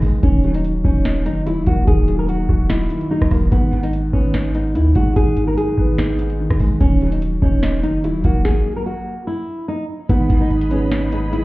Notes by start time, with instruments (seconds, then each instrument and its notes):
Already playing: felt piano G#2 D#3 G#3 B3 D#4, nylon-string guitar G#4
0.02 808-style bass G#1, felt piano G#3, kick, open hi-hat
0.23 808-style bass D#1, felt piano D#3, nylon-string guitar C#4, kick, closed hi-hat
0.44 felt piano F#3, closed hi-hat
0.54 nylon-string guitar D#4, closed hi-hat
0.64 closed hi-hat
0.84 808-style bass D#1, nylon-string guitar C#4, felt piano D#4, kick
1.05 felt piano D#5, snare, closed hi-hat
1.25 808-style bass F#1, felt piano D#3, nylon-string guitar D#4, closed hi-hat
1.46 808-style bass D#1, felt piano F#3, nylon-string guitar E4, closed hi-hat
1.66 808-style bass D#1, felt piano A#3, nylon-string guitar F#4, kick, closed hi-hat
1.87 808-style bass D#1, felt piano D#3, nylon-string guitar G#4, kick, closed hi-hat
2.08 felt piano F#3, closed hi-hat
2.19 nylon-string guitar A#4
2.29 nylon-string guitar F#4, closed hi-hat
2.49 808-style bass D#1, felt piano F#4, kick
2.69 nylon-string guitar E4, felt piano D#5, snare, closed hi-hat
2.90 felt piano D#3, closed hi-hat
3.01 closed hi-hat
3.11 felt piano F#3, nylon-string guitar D#4
3.22 808-style bass D#1, kick, cross-stick
3.31 808-style bass D#1, felt piano A#3, kick, cross-stick, open hi-hat
3.52 808-style bass G#1, felt piano G#2, nylon-string guitar B3, kick, closed hi-hat
3.72 felt piano D#3, closed hi-hat
3.83 nylon-string guitar D#4, closed hi-hat
3.93 closed hi-hat
4.13 808-style bass G#1, felt piano B3, nylon-string guitar C#4, kick
4.34 felt piano D#4, snare, closed hi-hat
4.55 felt piano G#2, nylon-string guitar D#4, closed hi-hat
4.75 808-style bass D#2, felt piano D#3, nylon-string guitar E4, closed hi-hat
4.95 808-style bass G#1, felt piano G#3, nylon-string guitar F#4, kick, closed hi-hat
5.16 808-style bass G#1, felt piano G#2, nylon-string guitar G#4, kick, closed hi-hat
5.37 felt piano D#3, closed hi-hat
5.48 nylon-string guitar A#4
5.57 nylon-string guitar G#4, closed hi-hat
5.78 808-style bass G#1, felt piano B3, kick
5.98 felt piano D#4, snare, closed hi-hat
6.19 felt piano G#2, closed hi-hat
6.30 closed hi-hat
6.40 felt piano D#3
6.50 808-style bass F#1, kick, cross-stick
6.60 808-style bass G#1, felt piano G#3, kick, open hi-hat
6.81 808-style bass D#1, felt piano D#3, nylon-string guitar C#4, kick, closed hi-hat
7.01 felt piano F#3, closed hi-hat
7.12 nylon-string guitar D#4, closed hi-hat
7.22 closed hi-hat
7.42 808-style bass D#1, nylon-string guitar C#4, felt piano D#4, kick
7.62 felt piano D#5, snare, closed hi-hat
7.83 808-style bass F#1, felt piano D#3, nylon-string guitar D#4, closed hi-hat
8.04 808-style bass D#1, felt piano F#3, nylon-string guitar E4, closed hi-hat
8.24 808-style bass D#1, felt piano A#3, nylon-string guitar F#4, kick, closed hi-hat
8.45 nylon-string guitar G#4, kick, snare
8.76 nylon-string guitar A#4
8.86 nylon-string guitar F#4
9.27 nylon-string guitar E4
9.68 nylon-string guitar D#4
10.09 808-style bass G#1, felt piano G#2, nylon-string guitar B3, string section G#4 D#5 B5, kick, closed hi-hat
10.30 808-style bass G#1, felt piano D#3, kick, closed hi-hat
10.41 nylon-string guitar D#4
10.50 closed hi-hat
10.61 closed hi-hat
10.71 felt piano B3, nylon-string guitar C#4, closed hi-hat
10.92 felt piano D#4, snare, closed hi-hat
11.12 felt piano G#2, nylon-string guitar D#4, closed hi-hat
11.33 felt piano D#3, nylon-string guitar E4, closed hi-hat